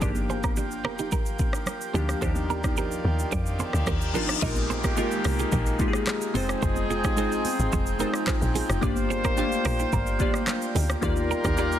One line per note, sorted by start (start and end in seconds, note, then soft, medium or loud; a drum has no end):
0.00 0.86 G1 loud
0.00 0.75 F3 medium
0.00 0.76 A#3 medium
0.00 4.38 A#3 medium
0.00 0.76 D4 medium
0.00 4.38 F4 medium
0.00 0.76 G4 loud
0.00 0.11 A#4 medium
0.00 0.11 D5 medium
0.00 2.18 G5 medium
0.00 kick loud
0.00 shaker medium
0.15 high conga medium
0.15 shaker soft
0.29 0.39 G#4 medium
0.29 0.39 C5 medium
0.29 high conga medium
0.29 shaker soft
0.44 0.53 G4 medium
0.44 0.52 A#4 medium
0.44 kick medium
0.44 cross-stick medium
0.44 high conga medium
0.44 shaker medium
0.56 0.67 D4 medium
0.56 0.66 G4 medium
0.56 shaker medium
0.71 shaker soft
0.84 1.15 F1 medium
0.84 0.94 G4 medium
0.84 0.94 A#4 medium
0.84 cross-stick loud
0.84 high conga medium
0.99 1.08 D#4 medium
0.99 1.07 G4 medium
0.99 shaker medium
1.12 1.30 G4 medium
1.12 1.29 A#4 medium
1.12 kick medium
1.12 low conga medium
1.12 shaker medium
1.26 shaker medium
1.39 kick loud
1.39 high conga medium
1.39 shaker medium
1.53 cross-stick medium
1.53 shaker medium
1.66 cross-stick loud
1.66 low conga medium
1.66 shaker medium
1.81 shaker medium
1.93 2.15 D2 loud
1.93 2.13 F3 medium
1.93 2.13 A#3 medium
1.93 2.13 D4 medium
1.93 2.04 D#4 medium
1.93 2.04 G4 medium
1.93 2.14 G4 medium
1.93 high conga medium
1.93 low conga medium
1.93 shaker soft
2.09 cross-stick medium
2.09 high conga medium
2.09 shaker medium
2.21 3.01 D#2 loud
2.21 4.40 D#3 medium
2.21 2.95 F3 medium
2.21 2.96 D4 medium
2.21 2.96 D#4 medium
2.21 4.40 G4 medium
2.21 2.97 G4 medium
2.21 2.32 G4 medium
2.21 2.31 C5 medium
2.21 4.40 D5 medium
2.21 kick loud
2.21 shaker medium
2.35 high conga medium
2.35 shaker soft
2.50 2.59 G4 medium
2.50 2.59 A#4 medium
2.50 high conga medium
2.50 shaker soft
2.64 2.73 D#4 medium
2.64 2.72 G4 medium
2.64 kick medium
2.64 cross-stick medium
2.64 high conga medium
2.64 shaker medium
2.77 2.95 G4 medium
2.77 2.95 A#4 medium
2.77 shaker medium
2.92 shaker soft
3.04 3.25 D#2 medium
3.04 high conga medium
3.19 shaker medium
3.32 3.63 F2 loud
3.32 3.42 A#4 medium
3.32 3.41 D5 medium
3.32 kick medium
3.32 reverse cymbal medium
3.32 low conga medium
3.32 shaker medium
3.46 shaker medium
3.59 3.69 G#4 medium
3.59 3.69 C5 medium
3.59 high conga medium
3.59 shaker medium
3.73 3.84 D2 medium
3.73 cross-stick medium
3.73 shaker medium
3.86 4.16 D#2 medium
3.86 3.97 G4 medium
3.86 3.96 A#4 medium
3.86 kick medium
3.86 cross-stick loud
3.86 low conga medium
3.86 shaker medium
4.01 shaker medium
4.13 4.35 G#1 medium
4.13 4.33 F3 medium
4.13 4.33 D4 medium
4.13 4.33 D#4 medium
4.13 4.34 F4 medium
4.13 4.25 G4 medium
4.13 4.24 A#4 medium
4.13 high conga medium
4.13 low conga medium
4.13 shaker medium
4.29 cross-stick medium
4.29 high conga medium
4.29 shaker medium
4.41 4.86 A#1 loud
4.41 6.04 D#3 medium
4.41 4.79 G#3 medium
4.41 6.33 G#3 medium
4.41 4.79 A#3 medium
4.41 6.04 A#3 medium
4.41 6.33 A#3 medium
4.41 8.78 D#4 medium
4.41 4.79 D#4 medium
4.41 4.80 F4 medium
4.41 6.04 G4 loud
4.41 4.52 A#4 medium
4.41 4.80 A#4 loud
4.41 4.51 D#5 medium
4.41 kick loud
4.41 crash loud
4.41 downlifter medium
4.41 shaker medium
4.56 high conga medium
4.56 shaker soft
4.70 4.79 G#4 medium
4.70 4.79 C5 medium
4.70 high conga medium
4.70 shaker soft
4.84 5.14 G#1 medium
4.84 4.93 G4 medium
4.84 4.93 A#4 medium
4.84 kick medium
4.84 cross-stick medium
4.84 high conga medium
4.84 shaker medium
4.96 5.52 G#3 medium
4.96 5.52 A#3 medium
4.96 5.53 D#4 medium
4.96 5.53 F4 medium
4.96 5.07 F4 medium
4.96 5.07 G#4 medium
4.96 5.53 A#4 medium
4.96 shaker medium
5.12 shaker soft
5.24 5.45 C2 medium
5.24 5.35 G4 medium
5.24 5.34 A#4 medium
5.24 cross-stick loud
5.24 open hi-hat medium
5.24 high conga medium
5.39 5.48 F4 medium
5.39 5.48 G#4 medium
5.39 shaker medium
5.52 5.83 A#1 loud
5.52 5.70 F4 medium
5.52 5.70 A#4 medium
5.52 kick loud
5.52 low conga medium
5.52 shaker medium
5.66 shaker medium
5.79 6.33 G#3 medium
5.79 6.35 A#3 medium
5.79 6.34 D#4 medium
5.79 6.35 F4 medium
5.79 5.87 G4 medium
5.79 kick loud
5.79 high conga medium
5.79 shaker medium
5.88 6.39 G#4 medium
5.93 cross-stick medium
5.93 shaker medium
6.07 cross-stick loud
6.07 clap loud
6.07 low conga medium
6.07 shaker medium
6.22 shaker medium
6.34 6.55 F1 loud
6.34 8.51 F3 medium
6.34 8.80 F3 medium
6.34 7.01 G#3 medium
6.34 7.01 C4 medium
6.34 8.80 C4 medium
6.34 7.01 D#4 medium
6.34 8.51 D#4 medium
6.34 7.02 F4 medium
6.34 6.45 F4 medium
6.34 8.80 G#4 medium
6.34 8.51 G#4 loud
6.34 6.44 G#4 medium
6.34 7.02 C5 loud
6.34 11.79 G5 medium
6.34 open hi-hat medium
6.34 high conga medium
6.34 low conga medium
6.34 shaker medium
6.49 cross-stick loud
6.49 shaker medium
6.62 7.06 F1 loud
6.62 6.72 G#4 medium
6.62 6.71 C5 medium
6.62 kick loud
6.62 shaker medium
6.76 high conga medium
6.76 shaker soft
6.90 7.00 F4 medium
6.90 6.99 G#4 medium
6.90 high conga medium
6.90 shaker soft
7.04 7.45 A#1 medium
7.04 7.13 D#4 medium
7.04 7.13 G4 medium
7.04 kick medium
7.04 cross-stick medium
7.04 high conga medium
7.04 shaker medium
7.16 7.72 G#3 medium
7.16 7.72 C4 medium
7.16 7.73 D#4 medium
7.16 7.73 F4 medium
7.16 7.36 F4 medium
7.16 7.35 G#4 medium
7.16 7.73 C5 medium
7.16 shaker medium
7.32 shaker soft
7.45 open hi-hat medium
7.45 high conga medium
7.59 7.69 G#1 loud
7.59 shaker medium
7.72 8.04 F1 loud
7.72 7.82 G#4 medium
7.72 7.82 C5 medium
7.72 kick medium
7.72 low conga medium
7.72 shaker medium
7.86 shaker medium
7.99 8.55 G#3 medium
7.99 8.55 C4 medium
7.99 8.55 D#4 medium
7.99 8.55 F4 medium
7.99 8.10 G4 medium
7.99 8.09 A#4 medium
7.99 8.56 C5 medium
7.99 high conga loud
7.99 shaker medium
8.14 cross-stick medium
8.14 shaker medium
8.27 8.37 G#4 medium
8.27 8.37 C5 medium
8.27 kick loud
8.27 cross-stick loud
8.27 clap loud
8.27 low conga medium
8.27 shaker medium
8.42 8.62 A#1 loud
8.42 shaker medium
8.55 8.65 F4 medium
8.55 8.64 G#4 medium
8.55 open hi-hat medium
8.55 high conga medium
8.55 low conga medium
8.55 shaker medium
8.69 8.79 F1 medium
8.69 cross-stick loud
8.69 shaker medium
8.81 9.26 G1 loud
8.81 10.71 G3 medium
8.81 9.19 A#3 medium
8.81 11.01 A#3 medium
8.81 9.19 D4 medium
8.81 9.20 F4 medium
8.81 11.79 F4 medium
8.81 10.71 F4 medium
8.81 9.20 G4 medium
8.81 8.92 A#4 medium
8.81 10.71 C5 loud
8.81 8.92 D5 loud
8.81 9.20 D5 loud
8.81 kick loud
8.81 shaker medium
8.96 high conga medium
8.96 shaker medium
9.10 9.20 G#4 medium
9.10 9.19 C5 medium
9.10 high conga medium
9.10 shaker soft
9.24 9.54 F1 medium
9.24 9.33 G4 medium
9.24 9.33 A#4 medium
9.24 kick medium
9.24 cross-stick medium
9.24 high conga medium
9.24 shaker medium
9.36 9.44 A3 medium
9.36 9.92 D4 medium
9.36 9.47 D4 medium
9.36 9.93 F4 medium
9.36 9.47 G4 medium
9.36 9.93 G4 medium
9.36 9.93 F5 medium
9.36 shaker medium
9.43 9.95 A#3 medium
9.52 shaker soft
9.65 9.85 A#1 medium
9.65 9.75 G4 medium
9.65 9.74 A#4 medium
9.65 cross-stick loud
9.65 open hi-hat medium
9.65 high conga medium
9.80 9.89 D#4 medium
9.80 9.88 G4 medium
9.80 shaker medium
9.93 10.24 G1 loud
9.93 10.11 G4 medium
9.93 10.10 A#4 medium
9.93 kick medium
9.93 low conga medium
9.93 shaker medium
10.07 shaker medium
10.19 10.75 A#3 medium
10.19 10.75 D4 medium
10.19 10.75 F4 medium
10.19 10.76 G4 medium
10.19 10.76 D5 medium
10.19 kick loud
10.19 high conga medium
10.19 shaker medium
10.34 cross-stick medium
10.34 shaker medium
10.47 cross-stick loud
10.47 clap medium
10.47 low conga medium
10.47 shaker medium
10.62 shaker medium
10.75 10.96 D2 medium
10.75 10.85 D#4 medium
10.75 10.85 G4 medium
10.75 open hi-hat medium
10.75 high conga medium
10.75 low conga medium
10.75 shaker medium
10.90 cross-stick loud
10.90 shaker medium
11.01 11.34 D#2 loud
11.01 11.79 D#3 medium
11.01 11.79 G3 medium
11.01 11.39 A#3 medium
11.01 11.79 A#3 medium
11.01 11.39 D#4 medium
11.01 11.40 F4 medium
11.01 11.79 F4 medium
11.01 11.40 G4 medium
11.01 11.13 G4 medium
11.01 11.79 A#4 loud
11.01 11.12 C5 medium
11.01 11.79 D5 medium
11.01 11.41 D5 loud
11.01 kick loud
11.01 shaker medium
11.16 high conga medium
11.16 shaker soft
11.30 11.40 G4 medium
11.30 11.40 A#4 medium
11.30 high conga medium
11.30 shaker soft
11.44 11.79 D#2 medium
11.44 11.54 D#4 medium
11.44 11.53 G4 medium
11.44 kick medium
11.44 cross-stick medium
11.44 high conga medium
11.44 shaker medium
11.57 11.79 A#3 medium
11.57 11.79 D#4 medium
11.57 11.79 F4 medium
11.57 11.79 G4 medium
11.57 11.76 G4 medium
11.57 11.75 A#4 medium
11.57 11.79 D5 medium
11.57 shaker medium
11.72 shaker soft